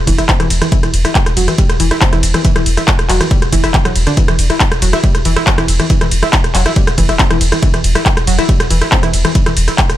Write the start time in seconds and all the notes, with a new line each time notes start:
0.07 E1 E3, kick, open hi-hat, ride
0.18 E4, cross-stick, closed hi-hat
0.29 C4, kick, clap, closed hi-hat
0.40 E1 E3, cross-stick, closed hi-hat
0.50 E1, open hi-hat, ride
0.62 E3, cross-stick, closed hi-hat
0.72 E3, kick, closed hi-hat
0.83 E1 E3, cross-stick, closed hi-hat
0.94 E1, open hi-hat, ride
1.05 E4, cross-stick, closed hi-hat
1.15 kick, clap, closed hi-hat
1.26 E1, cross-stick, closed hi-hat
1.37 E1 F#3, open hi-hat, ride
1.48 E3, cross-stick, closed hi-hat
1.58 G3, kick, closed hi-hat
1.69 E1, cross-stick, closed hi-hat
1.80 E1 E3, open hi-hat, ride
1.91 E4, cross-stick, closed hi-hat
2.01 C4, kick, clap, closed hi-hat
2.12 E1 E3, cross-stick, closed hi-hat
2.23 E1, open hi-hat, ride
2.34 E3, cross-stick, closed hi-hat
2.45 E3, kick, closed hi-hat
2.56 E1 E3, cross-stick, closed hi-hat
2.66 E1, open hi-hat, ride
2.77 E4, cross-stick, closed hi-hat
2.88 kick, clap, closed hi-hat
2.99 E1, cross-stick, closed hi-hat
3.09 E1 F#3, clap, open hi-hat, ride
3.21 E3, cross-stick, closed hi-hat
3.31 G3, kick, closed hi-hat
3.42 E1, cross-stick, closed hi-hat
3.52 E1 E3, kick, open hi-hat, ride
3.64 E4, cross-stick, closed hi-hat
3.74 E3, kick, clap, closed hi-hat
3.85 E1 F#3, cross-stick, closed hi-hat
3.96 E1, open hi-hat, ride
4.07 D3, cross-stick, closed hi-hat
4.17 E3, kick, closed hi-hat
4.28 E1 E3, cross-stick, closed hi-hat
4.39 E1, open hi-hat, ride
4.50 E4, cross-stick, closed hi-hat
4.60 kick, clap, closed hi-hat
4.72 E1, cross-stick, closed hi-hat
4.82 E1 F#3, open hi-hat, ride
4.93 E4, cross-stick, closed hi-hat
5.04 G3, kick, closed hi-hat
5.15 E1, cross-stick, closed hi-hat
5.25 E1 E3, open hi-hat, ride
5.36 E4, cross-stick, closed hi-hat
5.47 C4, kick, clap, closed hi-hat
5.58 E1 E3, cross-stick, closed hi-hat
5.68 E1, open hi-hat, ride
5.80 E3, cross-stick, closed hi-hat
5.90 E3, kick, closed hi-hat
6.01 E1 E3, cross-stick, closed hi-hat
6.11 E1, open hi-hat, ride
6.23 E4, cross-stick, closed hi-hat
6.33 kick, clap, closed hi-hat
6.44 E1, cross-stick, closed hi-hat
6.55 E1 F#3, clap, open hi-hat, ride
6.66 E4, cross-stick, closed hi-hat
6.76 G3, kick, closed hi-hat
6.87 E1, cross-stick, closed hi-hat
6.98 E1 E3, kick, open hi-hat, ride
7.09 E4, cross-stick, closed hi-hat
7.19 C4, kick, clap, closed hi-hat
7.31 E1 E3, cross-stick, closed hi-hat
7.41 E1, open hi-hat, ride
7.52 E3, cross-stick, closed hi-hat
7.62 E3, kick, closed hi-hat
7.74 E1 E3, cross-stick, closed hi-hat
7.84 E1, open hi-hat, ride
7.95 E4, cross-stick, closed hi-hat
8.06 kick, clap, closed hi-hat
8.17 E1, cross-stick, closed hi-hat
8.27 E1 F#3, open hi-hat, ride
8.39 E4, cross-stick, closed hi-hat
8.49 G3, kick, closed hi-hat
8.60 E1, cross-stick, closed hi-hat
8.70 E1 E3, open hi-hat, ride
8.82 E4, cross-stick, closed hi-hat
8.92 C4, kick, clap, closed hi-hat
9.03 E1 E3, cross-stick, closed hi-hat
9.14 E1, open hi-hat, ride
9.25 E3, cross-stick, closed hi-hat
9.35 E3, kick, closed hi-hat
9.46 E1 E3, cross-stick, closed hi-hat
9.57 E1, open hi-hat, ride
9.68 E4, cross-stick, closed hi-hat
9.78 kick, clap, closed hi-hat
9.90 E1, cross-stick, closed hi-hat